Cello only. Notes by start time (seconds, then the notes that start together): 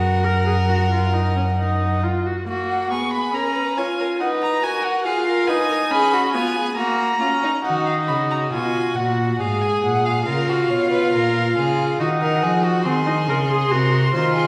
Already playing: F#2
7.66 D#3
8.10 C#3
8.54 B2
8.97 A#2
9.40 G#2
9.84 A#2
10.27 C#3
10.71 B2
11.14 A#2
11.57 C#3
12.00 D#3
12.43 F3
12.86 D#3
13.29 C#3
13.71 C3
14.14 D#3